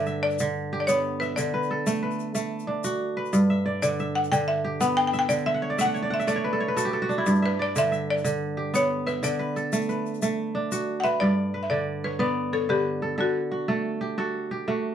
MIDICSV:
0, 0, Header, 1, 4, 480
1, 0, Start_track
1, 0, Tempo, 327154
1, 2013, Time_signature, 12, 3, 24, 8
1, 12578, Tempo, 329852
1, 21855, End_track
2, 0, Start_track
2, 0, Title_t, "Marimba"
2, 0, Program_c, 0, 12
2, 0, Note_on_c, 0, 76, 100
2, 335, Note_on_c, 0, 74, 87
2, 346, Note_off_c, 0, 76, 0
2, 1159, Note_off_c, 0, 74, 0
2, 1177, Note_on_c, 0, 74, 60
2, 1278, Note_on_c, 0, 73, 87
2, 1287, Note_off_c, 0, 74, 0
2, 1731, Note_off_c, 0, 73, 0
2, 1759, Note_on_c, 0, 71, 75
2, 1998, Note_on_c, 0, 74, 80
2, 2014, Note_off_c, 0, 71, 0
2, 3385, Note_off_c, 0, 74, 0
2, 5611, Note_on_c, 0, 74, 82
2, 6057, Note_off_c, 0, 74, 0
2, 6096, Note_on_c, 0, 78, 83
2, 6333, Note_on_c, 0, 79, 97
2, 6340, Note_off_c, 0, 78, 0
2, 6571, Note_on_c, 0, 76, 87
2, 6578, Note_off_c, 0, 79, 0
2, 7052, Note_on_c, 0, 78, 87
2, 7064, Note_off_c, 0, 76, 0
2, 7160, Note_off_c, 0, 78, 0
2, 7291, Note_on_c, 0, 79, 98
2, 7428, Note_off_c, 0, 79, 0
2, 7446, Note_on_c, 0, 79, 74
2, 7595, Note_off_c, 0, 79, 0
2, 7612, Note_on_c, 0, 79, 99
2, 7761, Note_on_c, 0, 74, 82
2, 7776, Note_off_c, 0, 79, 0
2, 8013, Note_off_c, 0, 74, 0
2, 8014, Note_on_c, 0, 76, 86
2, 8507, Note_off_c, 0, 76, 0
2, 8525, Note_on_c, 0, 78, 95
2, 9002, Note_off_c, 0, 78, 0
2, 9004, Note_on_c, 0, 76, 74
2, 9215, Note_on_c, 0, 74, 69
2, 9235, Note_off_c, 0, 76, 0
2, 9885, Note_off_c, 0, 74, 0
2, 10939, Note_on_c, 0, 71, 83
2, 11142, Note_off_c, 0, 71, 0
2, 11180, Note_on_c, 0, 74, 82
2, 11405, Note_off_c, 0, 74, 0
2, 11419, Note_on_c, 0, 76, 103
2, 11891, Note_on_c, 0, 74, 86
2, 11893, Note_off_c, 0, 76, 0
2, 12842, Note_on_c, 0, 73, 83
2, 12864, Note_off_c, 0, 74, 0
2, 13304, Note_on_c, 0, 71, 74
2, 13322, Note_off_c, 0, 73, 0
2, 13546, Note_off_c, 0, 71, 0
2, 13551, Note_on_c, 0, 74, 80
2, 14920, Note_off_c, 0, 74, 0
2, 16110, Note_on_c, 0, 78, 64
2, 16163, Note_on_c, 0, 76, 88
2, 16170, Note_off_c, 0, 78, 0
2, 16272, Note_off_c, 0, 76, 0
2, 16402, Note_on_c, 0, 74, 77
2, 16980, Note_off_c, 0, 74, 0
2, 17024, Note_on_c, 0, 76, 56
2, 17127, Note_on_c, 0, 74, 78
2, 17128, Note_off_c, 0, 76, 0
2, 17574, Note_off_c, 0, 74, 0
2, 17628, Note_on_c, 0, 71, 68
2, 17732, Note_off_c, 0, 71, 0
2, 17857, Note_on_c, 0, 71, 72
2, 18341, Note_on_c, 0, 69, 71
2, 18348, Note_off_c, 0, 71, 0
2, 18559, Note_off_c, 0, 69, 0
2, 18584, Note_on_c, 0, 67, 67
2, 19248, Note_off_c, 0, 67, 0
2, 19320, Note_on_c, 0, 66, 60
2, 19978, Note_off_c, 0, 66, 0
2, 21855, End_track
3, 0, Start_track
3, 0, Title_t, "Kora"
3, 0, Program_c, 1, 46
3, 0, Note_on_c, 1, 43, 82
3, 0, Note_on_c, 1, 50, 81
3, 0, Note_on_c, 1, 57, 82
3, 0, Note_on_c, 1, 62, 62
3, 0, Note_on_c, 1, 71, 64
3, 0, Note_on_c, 1, 74, 59
3, 96, Note_on_c, 1, 76, 62
3, 573, Note_off_c, 1, 50, 0
3, 591, Note_on_c, 1, 50, 87
3, 638, Note_off_c, 1, 57, 0
3, 662, Note_off_c, 1, 62, 0
3, 701, Note_off_c, 1, 71, 0
3, 1066, Note_on_c, 1, 67, 66
3, 1251, Note_off_c, 1, 74, 0
3, 1299, Note_on_c, 1, 59, 82
3, 1613, Note_off_c, 1, 76, 0
3, 1780, Note_on_c, 1, 76, 67
3, 2000, Note_off_c, 1, 50, 0
3, 2017, Note_on_c, 1, 50, 77
3, 2087, Note_off_c, 1, 43, 0
3, 2256, Note_on_c, 1, 71, 61
3, 2503, Note_on_c, 1, 69, 63
3, 2737, Note_on_c, 1, 57, 77
3, 2967, Note_off_c, 1, 71, 0
3, 2972, Note_on_c, 1, 71, 64
3, 3138, Note_off_c, 1, 67, 0
3, 3297, Note_off_c, 1, 76, 0
3, 3438, Note_off_c, 1, 57, 0
3, 3444, Note_on_c, 1, 57, 75
3, 3921, Note_on_c, 1, 62, 68
3, 4034, Note_off_c, 1, 59, 0
3, 4172, Note_on_c, 1, 66, 81
3, 4436, Note_off_c, 1, 69, 0
3, 4643, Note_off_c, 1, 71, 0
3, 4649, Note_on_c, 1, 71, 66
3, 4885, Note_on_c, 1, 43, 75
3, 4963, Note_off_c, 1, 50, 0
3, 4973, Note_off_c, 1, 66, 0
3, 5134, Note_on_c, 1, 76, 66
3, 5364, Note_on_c, 1, 74, 63
3, 5615, Note_on_c, 1, 50, 77
3, 5861, Note_off_c, 1, 76, 0
3, 5867, Note_on_c, 1, 76, 62
3, 6321, Note_off_c, 1, 50, 0
3, 6338, Note_on_c, 1, 50, 83
3, 6374, Note_off_c, 1, 57, 0
3, 6385, Note_off_c, 1, 62, 0
3, 6452, Note_off_c, 1, 71, 0
3, 6815, Note_on_c, 1, 67, 64
3, 6990, Note_off_c, 1, 74, 0
3, 7055, Note_on_c, 1, 59, 84
3, 7384, Note_off_c, 1, 76, 0
3, 7533, Note_on_c, 1, 76, 67
3, 7744, Note_off_c, 1, 50, 0
3, 7761, Note_on_c, 1, 50, 76
3, 7843, Note_off_c, 1, 43, 0
3, 8008, Note_off_c, 1, 76, 0
3, 8014, Note_on_c, 1, 76, 67
3, 8133, Note_on_c, 1, 78, 65
3, 8221, Note_off_c, 1, 67, 0
3, 8247, Note_on_c, 1, 73, 70
3, 8362, Note_on_c, 1, 74, 66
3, 8483, Note_off_c, 1, 76, 0
3, 8485, Note_on_c, 1, 57, 78
3, 8488, Note_on_c, 1, 76, 66
3, 8586, Note_off_c, 1, 78, 0
3, 8591, Note_on_c, 1, 78, 71
3, 8711, Note_off_c, 1, 73, 0
3, 8717, Note_on_c, 1, 73, 69
3, 8805, Note_off_c, 1, 74, 0
3, 8840, Note_on_c, 1, 74, 64
3, 8949, Note_off_c, 1, 78, 0
3, 8955, Note_on_c, 1, 78, 66
3, 9084, Note_off_c, 1, 76, 0
3, 9090, Note_on_c, 1, 76, 73
3, 9198, Note_off_c, 1, 57, 0
3, 9202, Note_off_c, 1, 74, 0
3, 9204, Note_on_c, 1, 57, 81
3, 9208, Note_on_c, 1, 74, 69
3, 9296, Note_off_c, 1, 73, 0
3, 9328, Note_on_c, 1, 73, 66
3, 9454, Note_on_c, 1, 71, 65
3, 9576, Note_on_c, 1, 69, 67
3, 9683, Note_off_c, 1, 73, 0
3, 9689, Note_on_c, 1, 73, 73
3, 9777, Note_off_c, 1, 74, 0
3, 9789, Note_off_c, 1, 59, 0
3, 9800, Note_off_c, 1, 71, 0
3, 9805, Note_on_c, 1, 71, 68
3, 9924, Note_off_c, 1, 69, 0
3, 9926, Note_on_c, 1, 66, 84
3, 9929, Note_on_c, 1, 69, 70
3, 10051, Note_on_c, 1, 67, 70
3, 10139, Note_off_c, 1, 78, 0
3, 10164, Note_off_c, 1, 69, 0
3, 10170, Note_on_c, 1, 69, 66
3, 10292, Note_off_c, 1, 66, 0
3, 10298, Note_on_c, 1, 66, 72
3, 10386, Note_off_c, 1, 67, 0
3, 10405, Note_on_c, 1, 62, 68
3, 10493, Note_off_c, 1, 73, 0
3, 10534, Note_on_c, 1, 64, 68
3, 10607, Note_off_c, 1, 76, 0
3, 10656, Note_on_c, 1, 43, 83
3, 10728, Note_off_c, 1, 50, 0
3, 10744, Note_off_c, 1, 66, 0
3, 10891, Note_on_c, 1, 76, 64
3, 11140, Note_on_c, 1, 74, 63
3, 11382, Note_on_c, 1, 50, 74
3, 11609, Note_off_c, 1, 71, 0
3, 11611, Note_off_c, 1, 76, 0
3, 11617, Note_on_c, 1, 76, 63
3, 12079, Note_off_c, 1, 50, 0
3, 12096, Note_on_c, 1, 50, 83
3, 12104, Note_off_c, 1, 69, 0
3, 12134, Note_off_c, 1, 57, 0
3, 12576, Note_on_c, 1, 67, 64
3, 12764, Note_off_c, 1, 74, 0
3, 12817, Note_on_c, 1, 59, 80
3, 12831, Note_off_c, 1, 64, 0
3, 12866, Note_off_c, 1, 62, 0
3, 13130, Note_off_c, 1, 76, 0
3, 13294, Note_on_c, 1, 76, 67
3, 13513, Note_off_c, 1, 50, 0
3, 13530, Note_on_c, 1, 50, 82
3, 13608, Note_off_c, 1, 43, 0
3, 13771, Note_on_c, 1, 71, 64
3, 14018, Note_on_c, 1, 69, 63
3, 14256, Note_on_c, 1, 57, 75
3, 14489, Note_off_c, 1, 71, 0
3, 14495, Note_on_c, 1, 71, 61
3, 14631, Note_off_c, 1, 67, 0
3, 14798, Note_off_c, 1, 76, 0
3, 14974, Note_off_c, 1, 57, 0
3, 14980, Note_on_c, 1, 57, 78
3, 15452, Note_on_c, 1, 62, 68
3, 15528, Note_off_c, 1, 59, 0
3, 15701, Note_on_c, 1, 66, 80
3, 15935, Note_off_c, 1, 69, 0
3, 16166, Note_off_c, 1, 71, 0
3, 16172, Note_on_c, 1, 71, 66
3, 16412, Note_on_c, 1, 74, 57
3, 16416, Note_on_c, 1, 43, 68
3, 16481, Note_off_c, 1, 50, 0
3, 16504, Note_off_c, 1, 66, 0
3, 16890, Note_off_c, 1, 71, 0
3, 16896, Note_on_c, 1, 71, 55
3, 17131, Note_off_c, 1, 74, 0
3, 17133, Note_on_c, 1, 50, 63
3, 17137, Note_on_c, 1, 74, 57
3, 17627, Note_on_c, 1, 73, 55
3, 17714, Note_off_c, 1, 62, 0
3, 17839, Note_off_c, 1, 74, 0
3, 17844, Note_on_c, 1, 59, 70
3, 17845, Note_on_c, 1, 74, 62
3, 17886, Note_off_c, 1, 57, 0
3, 18327, Note_off_c, 1, 73, 0
3, 18333, Note_on_c, 1, 73, 58
3, 18553, Note_off_c, 1, 50, 0
3, 18570, Note_on_c, 1, 50, 66
3, 18571, Note_off_c, 1, 71, 0
3, 18576, Note_on_c, 1, 71, 57
3, 19052, Note_on_c, 1, 69, 60
3, 19261, Note_off_c, 1, 50, 0
3, 19278, Note_off_c, 1, 69, 0
3, 19278, Note_on_c, 1, 50, 67
3, 19284, Note_on_c, 1, 69, 61
3, 19364, Note_off_c, 1, 43, 0
3, 19365, Note_off_c, 1, 73, 0
3, 19457, Note_off_c, 1, 74, 0
3, 19769, Note_on_c, 1, 66, 55
3, 20006, Note_off_c, 1, 69, 0
3, 20012, Note_on_c, 1, 69, 57
3, 20013, Note_on_c, 1, 57, 68
3, 20365, Note_off_c, 1, 71, 0
3, 20488, Note_on_c, 1, 67, 55
3, 20556, Note_off_c, 1, 59, 0
3, 20576, Note_off_c, 1, 66, 0
3, 20734, Note_off_c, 1, 69, 0
3, 20734, Note_on_c, 1, 66, 72
3, 20740, Note_on_c, 1, 69, 62
3, 21214, Note_off_c, 1, 67, 0
3, 21219, Note_on_c, 1, 67, 60
3, 21307, Note_off_c, 1, 66, 0
3, 21455, Note_off_c, 1, 57, 0
3, 21461, Note_on_c, 1, 57, 72
3, 21464, Note_on_c, 1, 66, 63
3, 21855, Note_off_c, 1, 50, 0
3, 21855, Note_off_c, 1, 57, 0
3, 21855, Note_off_c, 1, 66, 0
3, 21855, Note_off_c, 1, 67, 0
3, 21855, Note_off_c, 1, 69, 0
3, 21855, End_track
4, 0, Start_track
4, 0, Title_t, "Drums"
4, 94, Note_on_c, 9, 82, 18
4, 241, Note_off_c, 9, 82, 0
4, 451, Note_on_c, 9, 82, 18
4, 569, Note_off_c, 9, 82, 0
4, 569, Note_on_c, 9, 82, 62
4, 716, Note_off_c, 9, 82, 0
4, 1295, Note_on_c, 9, 82, 64
4, 1442, Note_off_c, 9, 82, 0
4, 1786, Note_on_c, 9, 82, 19
4, 1933, Note_off_c, 9, 82, 0
4, 2020, Note_on_c, 9, 82, 59
4, 2167, Note_off_c, 9, 82, 0
4, 2389, Note_on_c, 9, 82, 18
4, 2536, Note_off_c, 9, 82, 0
4, 2740, Note_on_c, 9, 82, 61
4, 2887, Note_off_c, 9, 82, 0
4, 3096, Note_on_c, 9, 82, 18
4, 3218, Note_off_c, 9, 82, 0
4, 3218, Note_on_c, 9, 82, 18
4, 3365, Note_off_c, 9, 82, 0
4, 3451, Note_on_c, 9, 82, 59
4, 3598, Note_off_c, 9, 82, 0
4, 3807, Note_on_c, 9, 82, 20
4, 3954, Note_off_c, 9, 82, 0
4, 4166, Note_on_c, 9, 82, 60
4, 4313, Note_off_c, 9, 82, 0
4, 4775, Note_on_c, 9, 82, 19
4, 4889, Note_off_c, 9, 82, 0
4, 4889, Note_on_c, 9, 82, 58
4, 5036, Note_off_c, 9, 82, 0
4, 5616, Note_on_c, 9, 82, 60
4, 5763, Note_off_c, 9, 82, 0
4, 5856, Note_on_c, 9, 82, 19
4, 6002, Note_off_c, 9, 82, 0
4, 6222, Note_on_c, 9, 82, 17
4, 6348, Note_off_c, 9, 82, 0
4, 6348, Note_on_c, 9, 82, 57
4, 6494, Note_off_c, 9, 82, 0
4, 7056, Note_on_c, 9, 82, 60
4, 7203, Note_off_c, 9, 82, 0
4, 7535, Note_on_c, 9, 82, 19
4, 7682, Note_off_c, 9, 82, 0
4, 7769, Note_on_c, 9, 82, 55
4, 7916, Note_off_c, 9, 82, 0
4, 8493, Note_on_c, 9, 82, 59
4, 8640, Note_off_c, 9, 82, 0
4, 8736, Note_on_c, 9, 82, 18
4, 8883, Note_off_c, 9, 82, 0
4, 9101, Note_on_c, 9, 82, 18
4, 9214, Note_off_c, 9, 82, 0
4, 9214, Note_on_c, 9, 82, 57
4, 9361, Note_off_c, 9, 82, 0
4, 9942, Note_on_c, 9, 82, 64
4, 10089, Note_off_c, 9, 82, 0
4, 10422, Note_on_c, 9, 82, 18
4, 10569, Note_off_c, 9, 82, 0
4, 10656, Note_on_c, 9, 82, 60
4, 10787, Note_off_c, 9, 82, 0
4, 10787, Note_on_c, 9, 82, 19
4, 10933, Note_off_c, 9, 82, 0
4, 11384, Note_on_c, 9, 82, 63
4, 11531, Note_off_c, 9, 82, 0
4, 11634, Note_on_c, 9, 82, 19
4, 11781, Note_off_c, 9, 82, 0
4, 12001, Note_on_c, 9, 82, 19
4, 12108, Note_off_c, 9, 82, 0
4, 12108, Note_on_c, 9, 82, 58
4, 12254, Note_off_c, 9, 82, 0
4, 12833, Note_on_c, 9, 82, 66
4, 12978, Note_off_c, 9, 82, 0
4, 13305, Note_on_c, 9, 82, 19
4, 13451, Note_off_c, 9, 82, 0
4, 13543, Note_on_c, 9, 82, 59
4, 13689, Note_off_c, 9, 82, 0
4, 14024, Note_on_c, 9, 82, 20
4, 14170, Note_off_c, 9, 82, 0
4, 14257, Note_on_c, 9, 82, 67
4, 14402, Note_off_c, 9, 82, 0
4, 14497, Note_on_c, 9, 82, 19
4, 14642, Note_off_c, 9, 82, 0
4, 14744, Note_on_c, 9, 82, 21
4, 14861, Note_off_c, 9, 82, 0
4, 14861, Note_on_c, 9, 82, 18
4, 14978, Note_off_c, 9, 82, 0
4, 14978, Note_on_c, 9, 82, 62
4, 15123, Note_off_c, 9, 82, 0
4, 15702, Note_on_c, 9, 82, 66
4, 15848, Note_off_c, 9, 82, 0
4, 16179, Note_on_c, 9, 82, 20
4, 16325, Note_off_c, 9, 82, 0
4, 21855, End_track
0, 0, End_of_file